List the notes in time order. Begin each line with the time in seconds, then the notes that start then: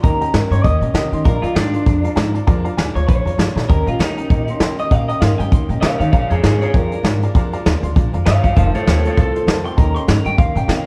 0.03 D#2 D#3 A#3 C#4 G4 D#5 G5 A#5, kick, closed hi-hat
0.21 A#3 C#4 G4 D#5 G5 A#5, closed hi-hat
0.34 G#2 D#3 A#3 C#4 G4 D#5 G5 A#5, snare, closed hi-hat
0.51 G2 A#3 C#4 G4 C#5 D#5 G5 C6, closed hi-hat
0.63 D#2 D#3 A#3 C#4 G4 D#5 G5 A#5, kick, closed hi-hat
0.81 A#2 A#3 C#4 G4 D#5 G5 A#5, closed hi-hat
0.94 C3 D#3 A#3 C#4 G4 D#5 G5 A#5, snare, closed hi-hat
1.11 D#3 A#3 C#4 G4 D#5 G5 C6, closed hi-hat
1.24 A#1 A#2 F3 G#3 D4 F4 A#4 D5 F5 A#5, kick, closed hi-hat
1.42 F2 G#3 D4 F4 D5 F5 A#5, closed hi-hat
1.55 G#2 A#2 F3 G#3 D4 F4 D5 F5 G5, snare, closed hi-hat
1.73 G#3 D4 F4 D5 F5 C6, closed hi-hat
1.85 F2 F3 G#3 D4 F4 D5 F5 A#5, kick, closed hi-hat
2.02 G#3 D4 F4 D5 F5 A#5, closed hi-hat
2.15 G#2 A#2 F3 G#3 D4 F4 D5 F5 A#5, snare, closed hi-hat
2.34 G#3 D4 F4 D5 F5 A#5, closed hi-hat
2.47 F2 A#2 F3 G#3 D4 F4 D5 F5 A#5, kick, closed hi-hat
2.64 G#3 D4 F4 D5 F5 A#5, closed hi-hat
2.77 D#2 A#2 F3 G#3 D4 F4 D5 F5 G#5, snare, closed hi-hat
2.95 D2 G#3 D4 F4 C#5 D5 F5 A#5, closed hi-hat
3.07 A#1 F3 G#3 D4 F4 C#5 D5 F5 A#5, kick, closed hi-hat
3.25 F2 G#3 D4 F4 D5 F5 A#5, closed hi-hat
3.38 G2 A#2 F3 G#3 D4 F4 D5 F5 A#5, snare, closed hi-hat
3.56 A#2 G#3 D4 F4 D5 F5 A#5, snare
3.68 D#2 D#3 A#3 C#4 G4 A#4 D#5 G5 A#5, kick, closed hi-hat
3.86 A#2 A#3 C#4 F4 G4 D#5 G5 A#5, closed hi-hat
3.99 C#3 D#3 A#3 C#4 D#4 G4 D#5 G5 A#5, snare, closed hi-hat
4.17 A#3 C#4 G4 D#5 G5 A#5, closed hi-hat
4.30 A#2 D#3 A#3 C#4 G4 D#5 G5 A#5, kick, closed hi-hat
4.47 A#3 C#4 G4 D#5 G5 C6, closed hi-hat
4.60 C#3 D#3 A#3 C#4 G4 D#5 G5 C6, snare, closed hi-hat
4.78 A#3 C#4 G4 D#5 G5 C#6, closed hi-hat
4.91 A#2 D#3 A#3 C#4 G4 D#5 F5 G5 A#5, kick, closed hi-hat
5.08 A#3 C#4 G4 D#5 G5 A#5, closed hi-hat
5.21 G#2 D#3 A#3 C#4 G4 D#5 F5 G5 C6, snare, closed hi-hat
5.38 G2 A#3 C#4 G4 D#5 G5 A#5, closed hi-hat
5.51 D#2 D#3 A#3 C#4 G4 D#5 G5 C6, kick, closed hi-hat
5.68 A#2 A#3 C#4 G4 D#5 G5 A#5, closed hi-hat
5.81 C3 D#3 A#3 C#4 G4 C#5 D#5 F5 G5 A#5, snare, closed hi-hat
5.99 D#3 A#3 C#4 G4 C#5 D#5 F5 G5 A#5, closed hi-hat
6.12 A#1 A#2 F3 G#3 D4 F4 C#5 D5 F5 A#5, kick, closed hi-hat
6.30 F2 G#3 D4 F4 G#4 C#5 D5 F5 A#5, closed hi-hat
6.43 G#2 A#2 F3 G#3 D4 F4 G#4 C#5 D5 F5 A#5, snare, closed hi-hat
6.61 G#3 D4 F4 G#4 C#5 D5 F5 A#5, closed hi-hat
6.74 F2 F3 G#3 D4 F4 A#4 D5 F5 G5, kick, closed hi-hat
6.92 G#3 D4 F4 D5 F5 A#5, closed hi-hat
7.03 G#2 A#2 F3 G#3 D4 F4 D5 F5 A#5, snare, closed hi-hat
7.22 G#3 D4 F4 D5 F5 A#5, closed hi-hat
7.35 F2 A#2 F3 G#3 D4 F4 D5 F5 A#5, kick, closed hi-hat
7.53 G#3 D4 F4 D5 F5 A#5, closed hi-hat
7.66 D#2 A#2 F3 G#3 D4 F4 D5 F5 A#5, snare, closed hi-hat
7.83 D2 G#3 D4 F4 D5 F5 C6, closed hi-hat
7.95 A#1 F3 G#3 D4 F4 D5 F5 A#5, kick, closed hi-hat
8.13 F2 G#3 D4 F4 D5 F5 A#5, closed hi-hat
8.25 G2 A#2 F3 G#3 D4 F4 C#5 D5 F5 A#5, snare, closed hi-hat
8.42 G1 G#3 D4 F4 C#5 F5 A#5, kick, closed hi-hat
8.55 F1 F2 C3 D#3 A3 C4 F4 C5 F5 A5, kick, closed hi-hat
8.74 C2 D#3 A3 C4 F4 A4 C5 C#5 F5 A5, closed hi-hat
8.86 D#2 F2 C3 D#3 A3 C4 F4 A4 C5 C#5 F5 G5, snare, closed hi-hat
9.04 D#3 A3 C4 F4 A4 C5 C#5 F5 A5, closed hi-hat
9.16 C2 D#3 A3 C4 F4 C5 F5 A5, kick, closed hi-hat
9.20 A4
9.34 D#3 A3 C4 F4 C5 F5 C6, closed hi-hat
9.47 F2 C3 D#3 A3 C4 F4 C5 F5 A5, snare, closed hi-hat
9.65 D#3 A3 C4 F4 C5 F5 G5 C6, closed hi-hat
9.77 D#2 D#3 A#3 C#4 G4 D#5 G5 A#5, kick, closed hi-hat
9.94 A#3 C#4 G4 D#5 G5 C6, closed hi-hat
10.07 G#2 D#3 A#3 C#4 G4 D#5 G5 A#5 C#6, snare, closed hi-hat
10.25 G2 A#3 C#4 G4 D#5 G5 C#6, closed hi-hat
10.38 D#2 D#3 A#3 C#4 G4 D#5 F5 G5 C6, kick, closed hi-hat
10.55 A#2 A#3 C#4 G4 D#5 G5 A#5, closed hi-hat
10.68 C3 D#3 A#3 C#4 G4 D#5 F5 G5 A#5, snare, closed hi-hat